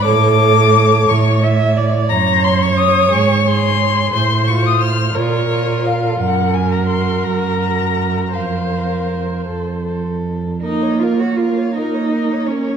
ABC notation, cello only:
X:1
M:6/8
L:1/16
Q:3/8=57
K:A
V:1 name="Cello" clef=bass
A,,6 A,,6 | [K:Bbm] G,,6 A,,6 | =A,,6 B,,6 | G,,6 G,,6 |
F,,6 F,,6 | E2 F G F2 E4 D2 |]